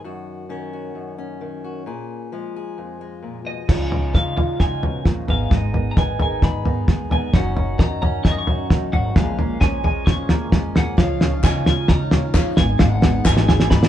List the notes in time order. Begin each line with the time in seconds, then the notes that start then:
Already playing: D#3
0.04 F#2 F#4
0.49 D#3 C#4
0.73 F#4
0.95 F#2
1.18 C#4
1.41 D#3
1.64 F#4
1.86 A#2 G#4
2.32 F3 G#3
2.56 G#4
2.78 F2
3.01 G#3
3.23 A#2
3.45 B2 D#5
3.68 C#2 C#3 F3 G#3 D#4 F4 C#5, kick, snare, floor tom, crash
3.91 C#4 D#4, floor tom
4.13 C#3 F3 D#4 F5, kick, snare, floor tom
4.37 G#3 F4 F5, floor tom
4.59 G#2 C#3 D#4 G#5, kick, snare, floor tom
4.82 B2 C#4, floor tom
5.05 D#2 A#2 F3, kick, snare, floor tom
5.27 G#1 G#2 B3 D#4 G#4 F5, floor tom
5.50 G#1 G#3 D#4 D#5, kick, snare, floor tom
5.73 D#3 B3, floor tom
5.91 A#5
5.96 G#1 B3 D#4 G#5, kick, snare, floor tom
6.19 D#3 D#4 G#4 G#5, floor tom
6.42 G#2 D#4 G#4 B5, kick, snare, floor tom
6.65 D#3 B3 D#4, floor tom
6.87 D#2 G#3 G#4, kick, snare, floor tom
7.10 G#2 B3 D#4 G#4 G#5, floor tom
7.33 F#1 F#2 F#3 C#4 D#4 F#4 F#5, kick, snare, floor tom
7.55 C#4 D#4, floor tom
7.78 F#2 D#3 D#4 A#5, kick, snare, floor tom
8.02 C#4 F#4 A#5, floor tom
8.24 F#2 D#4 C#6, kick, snare, floor tom
8.31 D#5
8.38 C#6
8.47 C#4 F#4, floor tom
8.70 A#1 D#3 F#3 D#4, kick, snare, floor tom
8.93 G#1 C#4 F#4 F#5, floor tom
9.16 A#1 A#2 G#3 C#4 G#4 F5, kick, snare, floor tom
9.39 A#3 C#4, floor tom
9.61 A#1 F3 C#4 G#5, kick, snare, floor tom
9.83 G#3 G#4 G#5, floor tom
10.06 F2 A#2 C#4 C#6, kick, snare, floor tom
10.29 A#3 G#4, snare, floor tom
10.51 F2 F3 G#3 C#4, kick, snare, floor tom
10.75 A#3 G#4 F#5, snare, floor tom
10.97 C#2 C#3 F3 G#3 C#4 D#4 F4 C#5 D#5 F5, kick, snare, floor tom
11.20 G#3 C#4 D#4 F4, snare, floor tom
11.31 C#4 D#4 F4
11.43 C#3 G#3 C#4 D#4 F4 G#5, kick, snare, clap, floor tom
11.66 F4 G#5, snare, floor tom
11.77 C#4 D#4 F4
11.88 C#3 D#4 A#5, kick, snare, floor tom
11.99 C#4 D#4 F4
12.11 G#3 C#4 D#4 F4, snare, floor tom
12.23 C#4 D#4 F4
12.33 D#2 C#3 F3 G#3 C#4 D#4 F4, kick, snare, clap, floor tom
12.56 G#1 G#2 G#3 B3 D#4 G#4 B4 D#5 G#5, snare, floor tom
12.67 G#3 B3 D#4 G#4
12.78 G#1 G#2 D#3 G#3 B3 D#4 G#4 F#5, kick, snare, floor tom
13.02 G#3 B3 D#4 G#4, snare, floor tom
13.13 G#3 B3 D#4 G#4
13.24 G#1 G#2 D#3 G#3 B3 D#4 G#4 G#5, kick, snare, clap, floor tom
13.37 snare
13.48 G#4 G#5, snare, floor tom
13.58 G#3 B3 D#4 G#4, snare
13.70 G#2 D#4 B5, kick, snare, floor tom
13.81 G#3 B3 D#4 G#4, snare